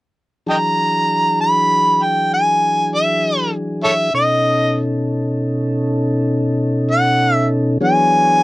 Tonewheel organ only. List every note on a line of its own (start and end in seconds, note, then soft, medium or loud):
0.46 4.10 E3 medium
0.46 4.10 F#3 medium
0.46 4.11 D4 soft
0.46 4.11 G#4 soft
4.13 7.78 B2 medium
4.13 7.78 C#4 medium
4.13 7.78 D#4 soft
4.13 7.78 A4 medium
7.80 8.43 E3 medium
7.80 8.43 F#3 medium
7.80 8.43 B3 medium
7.80 8.43 D4 medium
7.80 8.43 G#4 medium
7.80 8.43 C#5 medium